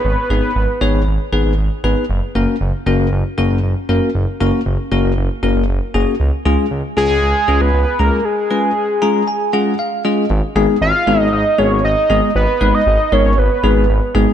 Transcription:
0.04 G#1 B4
0.30 G#1 B3 D#4 G#4 B4
0.56 G#1
0.81 G#1 B3 D#4 G#4 C#5
0.94 G#1
1.07 G#1
1.32 G#1 B3 D#4 G#4 B4
1.45 G#1
1.58 G#1
1.84 G#1 B3 D#4 G#4 B4
2.09 F#1
2.35 F#1 A#3 C#4 F#4 A#4
2.61 F#1
2.86 F#1 A#3 C#4 F#4 A#4
2.99 F#1
3.12 F#1
3.38 F#1 A#3 C#4 F#4 A#4
3.50 F#1
3.63 F#1
3.89 F#1 A#3 C#4 F#4 A#4
4.15 F#1
4.40 F#1 A#3 C#4 F#4 A#4
4.66 F#1
4.92 F#1 A#3 C#4 F#4 A#4
5.05 F#1
5.17 F#1
5.43 F#1 A#3 C#4 F#4 A#4
5.56 F#1
5.69 F#1
5.94 F#1 A#3 C#4 F#4 G#4
6.20 C#2
6.45 C#2 G#3 C#4 F4 G#4
6.71 C#2
6.97 C#2 G#3 C#4 F4 G#4
7.10 C#2
7.22 C#2
7.48 C#2 G#3 C#4 F4 G#4
7.61 C#2 B4
7.74 C#2
7.99 C#2 G#3 C#4 F4 G#4 A#4
8.25 G#4
8.51 G#3 C#4 F4 B4
9.02 G#3 C#4 F4 G#4 A#5
9.28 G#5
9.53 G#3 C#4 F4 G#4 F#5
9.79 F5
10.05 G#3 C#4 F4 G#4 D#5
10.30 G#1
10.56 G#1 G#3 B3 D#4 G#4
10.81 G#1 F5
11.07 G#1 G#3 B3 D#4 G#4
11.20 G#1 D#5
11.33 G#1 D#5
11.58 G#1 G#3 B3 D#4 G#4 C#5
11.71 G#1
11.84 G#1 D#5
12.10 G#1 G#3 B3 D#4 G#4
12.35 G#1 B4
12.61 G#1 G#3 B3 D#4 B4
12.74 D#5
12.86 G#1
13.12 G#1 G#3 B3 D#4 A#4 C#5
13.25 G#1
13.38 G#1 B4
13.63 G#1 G#3 B3 D#4 G#4
13.76 G#1
13.89 G#1
14.15 G#1 G#3 B3 D#4 G#4

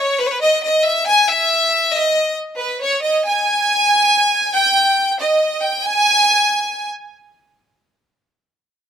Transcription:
Already playing: C#5
0.20 B4
0.27 C#5
0.31 B4
0.41 D#5
0.63 D#5
0.84 E5
1.07 G#5
1.29 E5
1.94 D#5
2.57 B4
2.83 C#5
3.02 D#5
3.27 G#5
4.54 G5
5.21 D#5
5.62 G5
5.85 G#5

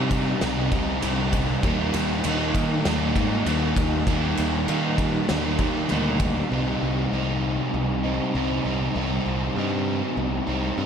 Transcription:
Already playing: C3 G3 C4 D#4
0.11 kick, ride
0.41 C2 C3 G3 C4 D#4, snare, ride
0.72 C2 G3 C4 D#4, kick, ride
1.02 C2 C3 G3 C4 D#4, ride
1.33 kick, ride
1.63 D#2 D#3 G3 A#3 D#4, kick, ride
1.94 D#2, ride
2.24 D#2 D#3 G3 A#3 D#4, ride
2.55 D#3, kick, ride
2.85 D#2 D#3 G3 A#3 D#4, snare, ride
3.15 G#2 G3 A#3 D#4, kick, ride
3.46 D#2 D#3 G3 A#3 D#4, ride
3.76 D#2, kick, ride
4.07 D#2 D#3 G3 A#3 D#4, kick, ride
4.37 D#2, ride
4.67 D#3 G3 A#3 D#4, ride
4.98 kick, ride
5.28 D#2 D#3 G3 A#3 D#4, snare, ride
5.58 D#2 G3 A#3 D#4, kick, ride
5.88 D2 D#3 G3 A#3 D#4, ride
6.20 kick, ride
6.49 C2 C3 G3 C4 D#4
6.83 C2
7.11 C2 C3 G3 C4 D#4
7.74 C2
8.03 G3 C4 D#4
8.34 C2 C3 G3 C4 D#4
8.64 C2 G3 C4 D#4
8.95 C2 C3 G3 C4 D#4
9.26 C2
9.56 G2 C3 G3 C4 D#4
10.17 C2
10.47 C2 G3 C4 D#4
10.77 G2 C3 G3 C4 D#4

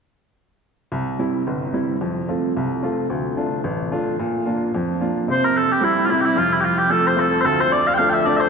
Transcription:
0.92 C2
1.19 G3 C4 E4
1.47 G1
1.73 G3 C4 E4
2.01 F2
2.28 A3 C4 F4
2.57 C2
2.83 A3 C4 F4
3.10 D2
3.37 A3 D4 F4
3.64 A1
3.91 A3 D4 F4
4.19 A#2
4.46 A#3 D4 F4
4.75 F2
5.00 A#3 D4 F4
5.28 C3 C5
5.45 A#4
5.57 A4
5.72 G4
5.81 G3 C4 E4
6.05 C4 F4
6.10 G3 E4
6.21 G4
6.25 E4
6.36 F2 F4
6.52 E4
6.60 F4 G4
6.78 G4
6.90 F3 A3 C4 A4
7.07 C5
7.17 F3 A3 C4 A4
7.41 D2 C5
7.45 A4
7.60 C5
7.72 D5
7.87 F5
7.94 G5
7.98 F3 A3 D4 F5
8.10 E5 G5
8.26 F3 A3 D4 D5
8.37 C5 E5

